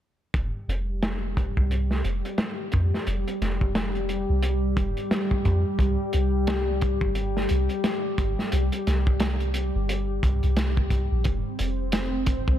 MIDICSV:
0, 0, Header, 1, 4, 480
1, 0, Start_track
1, 0, Tempo, 681818
1, 241, Time_signature, 4, 2, 24, 8
1, 8861, End_track
2, 0, Start_track
2, 0, Title_t, "Ambient pad"
2, 0, Program_c, 0, 92
2, 241, Note_on_c, 0, 55, 79
2, 246, Note_on_c, 0, 67, 80
2, 7922, Note_on_c, 0, 60, 82
2, 7927, Note_on_c, 0, 72, 80
2, 7933, Note_off_c, 0, 55, 0
2, 7935, Note_off_c, 0, 67, 0
2, 8861, Note_off_c, 0, 60, 0
2, 8861, Note_off_c, 0, 72, 0
2, 8861, End_track
3, 0, Start_track
3, 0, Title_t, "808-style bass"
3, 0, Program_c, 1, 38
3, 239, Note_on_c, 1, 29, 79
3, 365, Note_off_c, 1, 29, 0
3, 480, Note_on_c, 1, 29, 91
3, 1076, Note_off_c, 1, 29, 0
3, 1107, Note_on_c, 1, 36, 84
3, 1424, Note_off_c, 1, 36, 0
3, 1442, Note_on_c, 1, 29, 81
3, 1567, Note_off_c, 1, 29, 0
3, 1928, Note_on_c, 1, 41, 80
3, 2050, Note_off_c, 1, 41, 0
3, 2162, Note_on_c, 1, 29, 87
3, 2287, Note_off_c, 1, 29, 0
3, 2404, Note_on_c, 1, 29, 90
3, 2998, Note_off_c, 1, 29, 0
3, 3024, Note_on_c, 1, 36, 78
3, 3343, Note_off_c, 1, 36, 0
3, 3357, Note_on_c, 1, 29, 80
3, 3484, Note_off_c, 1, 29, 0
3, 3841, Note_on_c, 1, 41, 85
3, 3966, Note_off_c, 1, 41, 0
3, 4075, Note_on_c, 1, 36, 86
3, 4204, Note_off_c, 1, 36, 0
3, 4323, Note_on_c, 1, 36, 88
3, 4917, Note_off_c, 1, 36, 0
3, 4938, Note_on_c, 1, 31, 75
3, 5260, Note_off_c, 1, 31, 0
3, 5284, Note_on_c, 1, 36, 79
3, 5408, Note_off_c, 1, 36, 0
3, 5760, Note_on_c, 1, 31, 85
3, 5886, Note_off_c, 1, 31, 0
3, 6004, Note_on_c, 1, 36, 89
3, 6128, Note_off_c, 1, 36, 0
3, 6246, Note_on_c, 1, 36, 86
3, 6839, Note_off_c, 1, 36, 0
3, 6867, Note_on_c, 1, 31, 76
3, 7184, Note_off_c, 1, 31, 0
3, 7204, Note_on_c, 1, 36, 79
3, 7328, Note_off_c, 1, 36, 0
3, 7347, Note_on_c, 1, 36, 97
3, 7798, Note_off_c, 1, 36, 0
3, 7827, Note_on_c, 1, 34, 84
3, 7911, Note_off_c, 1, 34, 0
3, 7924, Note_on_c, 1, 29, 86
3, 8048, Note_off_c, 1, 29, 0
3, 8165, Note_on_c, 1, 29, 90
3, 8758, Note_off_c, 1, 29, 0
3, 8785, Note_on_c, 1, 36, 82
3, 8861, Note_off_c, 1, 36, 0
3, 8861, End_track
4, 0, Start_track
4, 0, Title_t, "Drums"
4, 239, Note_on_c, 9, 36, 93
4, 240, Note_on_c, 9, 42, 69
4, 310, Note_off_c, 9, 36, 0
4, 311, Note_off_c, 9, 42, 0
4, 488, Note_on_c, 9, 42, 64
4, 559, Note_off_c, 9, 42, 0
4, 722, Note_on_c, 9, 42, 75
4, 723, Note_on_c, 9, 38, 107
4, 793, Note_off_c, 9, 38, 0
4, 793, Note_off_c, 9, 42, 0
4, 965, Note_on_c, 9, 36, 76
4, 969, Note_on_c, 9, 42, 53
4, 1035, Note_off_c, 9, 36, 0
4, 1040, Note_off_c, 9, 42, 0
4, 1106, Note_on_c, 9, 36, 73
4, 1177, Note_off_c, 9, 36, 0
4, 1204, Note_on_c, 9, 42, 70
4, 1274, Note_off_c, 9, 42, 0
4, 1343, Note_on_c, 9, 38, 37
4, 1413, Note_off_c, 9, 38, 0
4, 1439, Note_on_c, 9, 42, 56
4, 1510, Note_off_c, 9, 42, 0
4, 1585, Note_on_c, 9, 42, 37
4, 1655, Note_off_c, 9, 42, 0
4, 1674, Note_on_c, 9, 42, 65
4, 1676, Note_on_c, 9, 38, 99
4, 1745, Note_off_c, 9, 42, 0
4, 1747, Note_off_c, 9, 38, 0
4, 1913, Note_on_c, 9, 42, 56
4, 1926, Note_on_c, 9, 36, 78
4, 1984, Note_off_c, 9, 42, 0
4, 1997, Note_off_c, 9, 36, 0
4, 2073, Note_on_c, 9, 38, 37
4, 2143, Note_off_c, 9, 38, 0
4, 2160, Note_on_c, 9, 42, 75
4, 2230, Note_off_c, 9, 42, 0
4, 2306, Note_on_c, 9, 42, 42
4, 2376, Note_off_c, 9, 42, 0
4, 2407, Note_on_c, 9, 42, 65
4, 2409, Note_on_c, 9, 38, 33
4, 2477, Note_off_c, 9, 42, 0
4, 2479, Note_off_c, 9, 38, 0
4, 2543, Note_on_c, 9, 36, 78
4, 2614, Note_off_c, 9, 36, 0
4, 2641, Note_on_c, 9, 38, 97
4, 2641, Note_on_c, 9, 42, 82
4, 2711, Note_off_c, 9, 38, 0
4, 2712, Note_off_c, 9, 42, 0
4, 2783, Note_on_c, 9, 42, 34
4, 2853, Note_off_c, 9, 42, 0
4, 2879, Note_on_c, 9, 42, 55
4, 2950, Note_off_c, 9, 42, 0
4, 3116, Note_on_c, 9, 42, 70
4, 3186, Note_off_c, 9, 42, 0
4, 3356, Note_on_c, 9, 36, 81
4, 3359, Note_on_c, 9, 42, 54
4, 3427, Note_off_c, 9, 36, 0
4, 3429, Note_off_c, 9, 42, 0
4, 3498, Note_on_c, 9, 42, 37
4, 3569, Note_off_c, 9, 42, 0
4, 3598, Note_on_c, 9, 38, 100
4, 3600, Note_on_c, 9, 42, 66
4, 3669, Note_off_c, 9, 38, 0
4, 3671, Note_off_c, 9, 42, 0
4, 3739, Note_on_c, 9, 36, 86
4, 3810, Note_off_c, 9, 36, 0
4, 3838, Note_on_c, 9, 42, 60
4, 3840, Note_on_c, 9, 36, 81
4, 3908, Note_off_c, 9, 42, 0
4, 3911, Note_off_c, 9, 36, 0
4, 4074, Note_on_c, 9, 36, 88
4, 4083, Note_on_c, 9, 42, 66
4, 4145, Note_off_c, 9, 36, 0
4, 4153, Note_off_c, 9, 42, 0
4, 4315, Note_on_c, 9, 42, 58
4, 4385, Note_off_c, 9, 42, 0
4, 4557, Note_on_c, 9, 42, 79
4, 4561, Note_on_c, 9, 38, 97
4, 4627, Note_off_c, 9, 42, 0
4, 4631, Note_off_c, 9, 38, 0
4, 4797, Note_on_c, 9, 42, 64
4, 4803, Note_on_c, 9, 36, 72
4, 4868, Note_off_c, 9, 42, 0
4, 4873, Note_off_c, 9, 36, 0
4, 4937, Note_on_c, 9, 36, 82
4, 5007, Note_off_c, 9, 36, 0
4, 5035, Note_on_c, 9, 42, 68
4, 5105, Note_off_c, 9, 42, 0
4, 5186, Note_on_c, 9, 38, 39
4, 5257, Note_off_c, 9, 38, 0
4, 5272, Note_on_c, 9, 42, 61
4, 5342, Note_off_c, 9, 42, 0
4, 5415, Note_on_c, 9, 42, 33
4, 5486, Note_off_c, 9, 42, 0
4, 5518, Note_on_c, 9, 42, 75
4, 5520, Note_on_c, 9, 38, 91
4, 5589, Note_off_c, 9, 42, 0
4, 5590, Note_off_c, 9, 38, 0
4, 5759, Note_on_c, 9, 36, 78
4, 5759, Note_on_c, 9, 42, 57
4, 5830, Note_off_c, 9, 36, 0
4, 5830, Note_off_c, 9, 42, 0
4, 5907, Note_on_c, 9, 38, 37
4, 5977, Note_off_c, 9, 38, 0
4, 5998, Note_on_c, 9, 42, 84
4, 6068, Note_off_c, 9, 42, 0
4, 6141, Note_on_c, 9, 42, 40
4, 6211, Note_off_c, 9, 42, 0
4, 6245, Note_on_c, 9, 42, 63
4, 6247, Note_on_c, 9, 38, 37
4, 6315, Note_off_c, 9, 42, 0
4, 6317, Note_off_c, 9, 38, 0
4, 6384, Note_on_c, 9, 36, 83
4, 6455, Note_off_c, 9, 36, 0
4, 6475, Note_on_c, 9, 42, 82
4, 6480, Note_on_c, 9, 38, 105
4, 6545, Note_off_c, 9, 42, 0
4, 6550, Note_off_c, 9, 38, 0
4, 6619, Note_on_c, 9, 42, 35
4, 6689, Note_off_c, 9, 42, 0
4, 6716, Note_on_c, 9, 42, 64
4, 6787, Note_off_c, 9, 42, 0
4, 6964, Note_on_c, 9, 42, 72
4, 7034, Note_off_c, 9, 42, 0
4, 7202, Note_on_c, 9, 36, 82
4, 7206, Note_on_c, 9, 42, 66
4, 7272, Note_off_c, 9, 36, 0
4, 7276, Note_off_c, 9, 42, 0
4, 7342, Note_on_c, 9, 42, 33
4, 7412, Note_off_c, 9, 42, 0
4, 7438, Note_on_c, 9, 42, 72
4, 7440, Note_on_c, 9, 38, 105
4, 7508, Note_off_c, 9, 42, 0
4, 7510, Note_off_c, 9, 38, 0
4, 7584, Note_on_c, 9, 36, 81
4, 7654, Note_off_c, 9, 36, 0
4, 7677, Note_on_c, 9, 36, 70
4, 7677, Note_on_c, 9, 42, 57
4, 7747, Note_off_c, 9, 36, 0
4, 7747, Note_off_c, 9, 42, 0
4, 7915, Note_on_c, 9, 42, 65
4, 7922, Note_on_c, 9, 36, 101
4, 7986, Note_off_c, 9, 42, 0
4, 7993, Note_off_c, 9, 36, 0
4, 8159, Note_on_c, 9, 42, 64
4, 8229, Note_off_c, 9, 42, 0
4, 8393, Note_on_c, 9, 42, 74
4, 8399, Note_on_c, 9, 38, 99
4, 8463, Note_off_c, 9, 42, 0
4, 8470, Note_off_c, 9, 38, 0
4, 8634, Note_on_c, 9, 42, 64
4, 8638, Note_on_c, 9, 36, 89
4, 8704, Note_off_c, 9, 42, 0
4, 8708, Note_off_c, 9, 36, 0
4, 8784, Note_on_c, 9, 36, 82
4, 8854, Note_off_c, 9, 36, 0
4, 8861, End_track
0, 0, End_of_file